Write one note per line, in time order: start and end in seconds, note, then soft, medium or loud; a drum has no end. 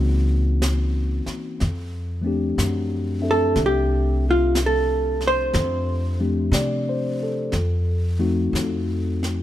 0.00 1.23 C#2 medium
0.00 1.61 E3 medium
0.00 1.61 A#3 medium
0.00 1.63 C4 medium
0.00 1.61 C#4 medium
0.00 1.62 D#4 soft
0.00 1.63 F#4 medium
0.00 0.62 A#4 medium
0.62 brush sweep soft
0.62 snare medium
0.62 hi-hat pedal medium
1.26 muted upright bass stroke soft
1.26 snare soft
1.60 2.55 F2 medium
1.60 brush sweep soft
1.60 snare soft
2.21 5.52 F3 medium
2.21 5.52 A3 medium
2.21 3.19 C4 medium
2.21 3.20 D4 medium
2.27 5.55 G4 medium
2.58 3.53 F#2 medium
2.58 brush sweep soft
2.58 snare soft
2.58 hi-hat pedal medium
3.21 5.52 C4 soft
3.21 5.53 D4 soft
3.21 5.54 A4 medium
3.21 5.53 E5 soft
3.31 3.60 A4 medium
3.56 5.49 C2 medium
3.56 brush sweep soft
3.56 snare soft
3.66 4.25 G4 medium
4.31 4.59 F4 medium
4.55 brush sweep soft
4.55 snare medium
4.55 hi-hat pedal medium
4.66 5.24 A4 medium
5.21 snare soft
5.27 6.19 C5 loud
5.53 6.49 F2 loud
5.53 brush sweep soft
5.53 snare soft
6.20 7.53 F3 soft
6.20 7.53 A3 medium
6.20 7.53 C4 soft
6.20 7.54 D4 soft
6.20 7.54 G4 soft
6.52 7.48 C3 medium
6.52 7.15 D5 medium
6.52 brush sweep soft
6.52 snare soft
6.52 hi-hat pedal medium
6.89 7.39 C5 medium
7.23 7.73 A4 medium
7.52 8.50 F2 medium
7.52 brush sweep soft
7.52 snare soft
8.19 9.43 F3 medium
8.19 9.43 A3 medium
8.19 9.43 C4 medium
8.19 9.43 D#4 medium
8.19 9.43 F#4 medium
8.53 9.43 F2 medium
8.53 brush sweep soft
8.53 snare medium
8.53 hi-hat pedal medium
9.23 snare soft